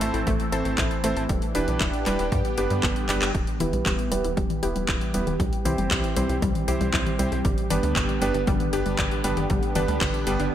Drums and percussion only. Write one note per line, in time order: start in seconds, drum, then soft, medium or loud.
0.01 closed hi-hat loud
0.14 closed hi-hat soft
0.27 kick loud
0.27 closed hi-hat medium
0.40 closed hi-hat soft
0.52 closed hi-hat medium
0.65 closed hi-hat soft
0.78 kick loud
0.78 clap loud
0.78 closed hi-hat medium
0.91 closed hi-hat soft
1.04 closed hi-hat loud
1.17 closed hi-hat soft
1.29 kick loud
1.29 closed hi-hat medium
1.42 closed hi-hat soft
1.55 closed hi-hat loud
1.68 closed hi-hat soft
1.81 kick loud
1.81 clap loud
1.81 closed hi-hat medium
1.93 closed hi-hat soft
2.06 clap medium
2.06 closed hi-hat medium
2.19 closed hi-hat soft
2.32 kick loud
2.32 closed hi-hat medium
2.45 closed hi-hat soft
2.58 closed hi-hat medium
2.70 closed hi-hat soft
2.83 kick loud
2.83 clap loud
2.83 closed hi-hat medium
2.96 closed hi-hat soft
3.09 clap medium
3.09 closed hi-hat loud
3.22 clap medium
3.22 closed hi-hat soft
3.35 kick loud
3.35 closed hi-hat medium
3.47 closed hi-hat soft
3.60 closed hi-hat loud
3.60 high tom medium
3.73 closed hi-hat soft
3.86 kick loud
3.86 clap loud
3.86 closed hi-hat medium
3.99 closed hi-hat soft
4.12 closed hi-hat medium
4.25 closed hi-hat soft
4.37 kick loud
4.37 closed hi-hat medium
4.50 closed hi-hat soft
4.50 high tom medium
4.63 closed hi-hat medium
4.76 closed hi-hat soft
4.88 kick loud
4.88 clap loud
4.88 closed hi-hat medium
5.01 closed hi-hat soft
5.14 closed hi-hat medium
5.27 closed hi-hat soft
5.27 high tom medium
5.40 kick loud
5.40 closed hi-hat medium
5.53 closed hi-hat soft
5.65 closed hi-hat medium
5.65 high tom medium
5.78 closed hi-hat soft
5.91 kick loud
5.91 clap loud
5.91 closed hi-hat medium
6.04 closed hi-hat soft
6.16 closed hi-hat medium
6.29 closed hi-hat soft
6.42 kick loud
6.42 closed hi-hat medium
6.55 closed hi-hat soft
6.55 high tom medium
6.68 closed hi-hat medium
6.81 closed hi-hat soft
6.94 kick loud
6.94 clap loud
6.94 closed hi-hat medium
7.06 closed hi-hat soft
7.06 high tom medium
7.19 closed hi-hat loud
7.32 closed hi-hat soft
7.45 kick loud
7.45 closed hi-hat medium
7.58 closed hi-hat soft
7.70 closed hi-hat medium
7.70 high tom medium
7.83 closed hi-hat soft
7.96 kick loud
7.96 clap loud
7.96 closed hi-hat medium
8.09 closed hi-hat soft
8.22 closed hi-hat medium
8.34 closed hi-hat soft
8.47 kick loud
8.47 closed hi-hat medium
8.60 closed hi-hat soft
8.60 high tom medium
8.73 closed hi-hat medium
8.86 closed hi-hat soft
8.99 kick loud
8.99 clap loud
8.99 closed hi-hat medium
9.11 closed hi-hat soft
9.24 closed hi-hat medium
9.37 closed hi-hat soft
9.37 high tom medium
9.50 kick loud
9.50 closed hi-hat medium
9.63 closed hi-hat soft
9.75 closed hi-hat medium
9.75 high tom medium
9.88 closed hi-hat soft
10.01 kick loud
10.01 clap loud
10.01 closed hi-hat medium
10.14 closed hi-hat soft
10.27 closed hi-hat medium
10.40 closed hi-hat soft